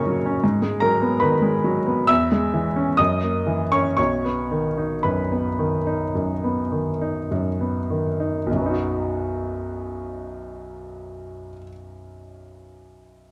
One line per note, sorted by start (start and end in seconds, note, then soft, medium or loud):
0.00 0.45 C#3 medium
0.00 0.07 F#3 soft
0.00 0.45 A#3 soft
0.00 0.26 C#4 medium
0.00 0.45 C#5 medium
0.00 0.45 D#5 medium
0.00 0.45 C#6 medium
0.00 0.45 D#6 medium
0.07 0.36 F#3 soft
0.26 0.44 C#4 soft
0.44 2.06 G#2 medium
0.62 0.93 G#3 soft
0.80 1.13 F#3 soft
0.80 1.18 A#4 medium
0.80 1.20 A#5 medium
1.02 1.34 B3 soft
1.20 1.56 D#3 soft
1.20 2.05 B4 soft
1.20 2.09 B5 medium
1.42 1.78 G#3 soft
1.64 2.00 F#3 medium
1.87 2.09 B3 soft
2.07 2.96 E2 medium
2.07 2.94 E5 medium
2.07 2.97 E6 medium
2.32 2.67 G#3 soft
2.54 2.89 E3 soft
2.76 2.99 C#4 soft
2.97 3.94 F#2 medium
2.97 3.67 D#5 medium
2.97 3.71 D#6 medium
3.23 3.62 A#3 soft
3.47 3.87 E3 soft
3.72 3.97 C#4 soft
3.72 3.96 C#5 soft
3.72 3.95 C#6 medium
3.97 6.11 B1 soft
3.97 5.00 C#5 medium
3.97 5.03 C#6 medium
4.25 4.66 B3 soft
4.51 4.93 D#3 soft
4.78 5.20 D#4 soft
5.03 5.48 F#2 soft
5.03 7.26 B4 soft
5.03 7.30 B5 medium
5.32 5.75 B3 soft
5.59 6.03 D#3 soft
5.87 6.32 D#4 soft
6.15 6.61 F#2 soft
6.44 6.90 B3 soft
6.72 7.18 D#3 soft
7.01 7.48 D#4 soft
7.31 7.78 F#2 soft
7.61 8.08 B3 soft
7.90 8.36 D#3 soft
8.20 8.47 D#4 soft
8.46 11.48 B1 soft
8.51 11.53 F#2 soft
8.56 11.57 F#3 soft
8.61 11.62 B3 soft
8.66 11.67 D#4 soft
8.70 11.71 F#4 soft